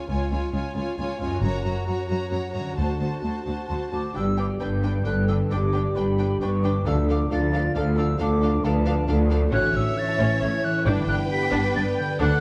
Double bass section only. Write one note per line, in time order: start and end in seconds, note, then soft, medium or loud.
0.09 0.30 C#2 soft
1.43 1.63 F#1 medium
2.78 2.99 D2 soft
4.15 4.55 G1 medium
4.61 5.00 G1 soft
5.05 5.45 G1 medium
5.51 5.90 G1 soft
5.96 6.36 G1 medium
6.41 6.81 G1 medium
6.85 7.25 D2 medium
7.30 7.70 D2 medium
7.75 8.14 D2 medium
8.19 8.59 D2 medium
8.64 9.03 D2 medium
9.08 9.48 D2 medium
9.52 9.60 A1 medium
9.74 9.82 A1 medium
10.20 10.28 A1 medium
10.42 10.50 A1 medium
10.86 10.94 G1 medium
11.08 11.16 G1 medium
11.53 11.61 G1 medium
11.75 11.83 G1 medium
12.21 12.29 D2 medium